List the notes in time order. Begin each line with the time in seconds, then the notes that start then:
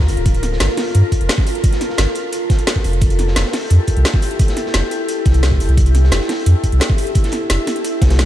Already playing: F4 A4 A#4
0.01 snare
0.08 G1, closed hi-hat, open hi-hat
0.17 D1, closed hi-hat
0.26 kick, closed hi-hat
0.34 closed hi-hat
0.43 snare, closed hi-hat
0.52 snare
0.60 G1, snare, closed hi-hat
0.68 snare
0.77 snare, closed hi-hat, open hi-hat
0.95 G2, closed hi-hat
1.12 kick, closed hi-hat
1.21 F1, closed hi-hat
1.29 snare, closed hi-hat
1.38 kick, snare
1.47 closed hi-hat, open hi-hat
1.55 closed hi-hat
1.64 kick, closed hi-hat
1.72 snare, closed hi-hat
1.81 snare, closed hi-hat
1.90 snare
1.98 G1, snare, closed hi-hat
2.15 closed hi-hat
2.32 closed hi-hat
2.50 kick, snare, closed hi-hat
2.59 closed hi-hat
2.67 snare, closed hi-hat
2.76 kick, snare
2.84 F1, closed hi-hat, open hi-hat
2.93 closed hi-hat
3.01 E4 G4, kick, closed hi-hat
3.10 closed hi-hat
3.19 snare, closed hi-hat
3.28 snare
3.36 F1, snare, closed hi-hat
3.45 snare
3.52 snare, closed hi-hat, open hi-hat
3.70 F2, closed hi-hat
3.87 kick, closed hi-hat
3.97 C2, closed hi-hat
4.05 snare, closed hi-hat
4.14 kick, snare
4.22 closed hi-hat, open hi-hat
4.31 closed hi-hat
4.39 kick, closed hi-hat
4.48 snare, closed hi-hat
4.57 snare, closed hi-hat
4.66 snare
4.74 F1, snare, closed hi-hat
4.91 closed hi-hat
5.09 closed hi-hat
5.25 C2, kick, snare, closed hi-hat
5.34 closed hi-hat
5.43 snare, closed hi-hat
5.52 kick, snare
5.60 F1, closed hi-hat, open hi-hat
5.69 C2, closed hi-hat
5.77 kick, closed hi-hat
5.86 closed hi-hat
5.95 snare, closed hi-hat
6.04 snare
6.12 F1, snare, closed hi-hat
6.21 snare
6.29 snare, closed hi-hat, open hi-hat
6.46 F2, closed hi-hat
6.64 kick, closed hi-hat
6.72 C2, closed hi-hat
6.80 snare, closed hi-hat
6.89 kick, snare
6.98 closed hi-hat, open hi-hat
7.07 closed hi-hat
7.15 kick, closed hi-hat
7.23 snare, closed hi-hat
7.32 snare, closed hi-hat
7.50 F1, snare, closed hi-hat
7.67 snare, closed hi-hat
7.76 closed hi-hat
7.84 closed hi-hat
8.02 C2, kick, snare, closed hi-hat
8.10 snare, closed hi-hat
8.18 A1, snare, closed hi-hat, high tom